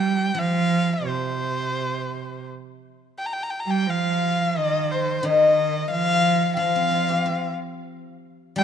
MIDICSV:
0, 0, Header, 1, 5, 480
1, 0, Start_track
1, 0, Tempo, 677966
1, 257, Time_signature, 4, 2, 24, 8
1, 740, Tempo, 703400
1, 3140, Tempo, 668896
1, 6063, End_track
2, 0, Start_track
2, 0, Title_t, "Erhu"
2, 0, Program_c, 0, 110
2, 0, Note_on_c, 0, 79, 84
2, 272, Note_on_c, 0, 77, 93
2, 283, Note_off_c, 0, 79, 0
2, 750, Note_on_c, 0, 72, 72
2, 760, Note_off_c, 0, 77, 0
2, 1717, Note_off_c, 0, 72, 0
2, 2198, Note_on_c, 0, 79, 76
2, 2248, Note_on_c, 0, 82, 78
2, 2258, Note_off_c, 0, 79, 0
2, 2298, Note_on_c, 0, 79, 82
2, 2309, Note_off_c, 0, 82, 0
2, 2366, Note_on_c, 0, 82, 81
2, 2376, Note_off_c, 0, 79, 0
2, 2416, Note_on_c, 0, 79, 74
2, 2426, Note_off_c, 0, 82, 0
2, 2482, Note_on_c, 0, 82, 81
2, 2492, Note_off_c, 0, 79, 0
2, 2550, Note_on_c, 0, 79, 90
2, 2561, Note_off_c, 0, 82, 0
2, 2684, Note_on_c, 0, 77, 93
2, 2694, Note_off_c, 0, 79, 0
2, 3143, Note_on_c, 0, 75, 90
2, 3154, Note_off_c, 0, 77, 0
2, 3390, Note_on_c, 0, 72, 77
2, 3401, Note_off_c, 0, 75, 0
2, 3632, Note_on_c, 0, 75, 84
2, 3643, Note_off_c, 0, 72, 0
2, 4099, Note_off_c, 0, 75, 0
2, 4104, Note_on_c, 0, 77, 106
2, 4559, Note_off_c, 0, 77, 0
2, 4574, Note_on_c, 0, 77, 94
2, 5267, Note_off_c, 0, 77, 0
2, 6024, Note_on_c, 0, 79, 97
2, 6063, Note_off_c, 0, 79, 0
2, 6063, End_track
3, 0, Start_track
3, 0, Title_t, "Dizi"
3, 0, Program_c, 1, 73
3, 2526, Note_on_c, 1, 79, 72
3, 2688, Note_on_c, 1, 77, 82
3, 2698, Note_off_c, 1, 79, 0
3, 3031, Note_off_c, 1, 77, 0
3, 3035, Note_on_c, 1, 77, 72
3, 3138, Note_off_c, 1, 77, 0
3, 3143, Note_on_c, 1, 75, 89
3, 3370, Note_off_c, 1, 75, 0
3, 3411, Note_on_c, 1, 72, 67
3, 3653, Note_on_c, 1, 75, 77
3, 3664, Note_off_c, 1, 72, 0
3, 4001, Note_off_c, 1, 75, 0
3, 4019, Note_on_c, 1, 75, 72
3, 4136, Note_on_c, 1, 77, 90
3, 4147, Note_off_c, 1, 75, 0
3, 4551, Note_off_c, 1, 77, 0
3, 4555, Note_on_c, 1, 79, 52
3, 4597, Note_on_c, 1, 77, 78
3, 4607, Note_off_c, 1, 79, 0
3, 5307, Note_off_c, 1, 77, 0
3, 6025, Note_on_c, 1, 79, 86
3, 6063, Note_off_c, 1, 79, 0
3, 6063, End_track
4, 0, Start_track
4, 0, Title_t, "Guzheng"
4, 0, Program_c, 2, 107
4, 0, Note_on_c, 2, 53, 59
4, 236, Note_off_c, 2, 53, 0
4, 245, Note_on_c, 2, 53, 59
4, 1706, Note_off_c, 2, 53, 0
4, 3618, Note_on_c, 2, 51, 66
4, 4579, Note_on_c, 2, 53, 65
4, 4713, Note_on_c, 2, 60, 52
4, 4826, Note_on_c, 2, 65, 45
4, 4952, Note_on_c, 2, 67, 48
4, 5063, Note_off_c, 2, 51, 0
4, 5073, Note_on_c, 2, 72, 54
4, 5662, Note_off_c, 2, 60, 0
4, 5778, Note_off_c, 2, 65, 0
4, 5901, Note_off_c, 2, 67, 0
4, 6008, Note_on_c, 2, 55, 70
4, 6014, Note_off_c, 2, 53, 0
4, 6023, Note_off_c, 2, 72, 0
4, 6063, Note_off_c, 2, 55, 0
4, 6063, End_track
5, 0, Start_track
5, 0, Title_t, "Cello"
5, 0, Program_c, 3, 42
5, 0, Note_on_c, 3, 55, 89
5, 253, Note_off_c, 3, 55, 0
5, 257, Note_on_c, 3, 53, 95
5, 712, Note_off_c, 3, 53, 0
5, 741, Note_on_c, 3, 48, 64
5, 1686, Note_off_c, 3, 48, 0
5, 2526, Note_on_c, 3, 55, 80
5, 2664, Note_on_c, 3, 53, 81
5, 2674, Note_off_c, 3, 55, 0
5, 3143, Note_on_c, 3, 51, 81
5, 3154, Note_off_c, 3, 53, 0
5, 3625, Note_off_c, 3, 51, 0
5, 3630, Note_on_c, 3, 51, 74
5, 4081, Note_off_c, 3, 51, 0
5, 4106, Note_on_c, 3, 53, 96
5, 4560, Note_off_c, 3, 53, 0
5, 4605, Note_on_c, 3, 53, 74
5, 5283, Note_off_c, 3, 53, 0
5, 6024, Note_on_c, 3, 55, 98
5, 6063, Note_off_c, 3, 55, 0
5, 6063, End_track
0, 0, End_of_file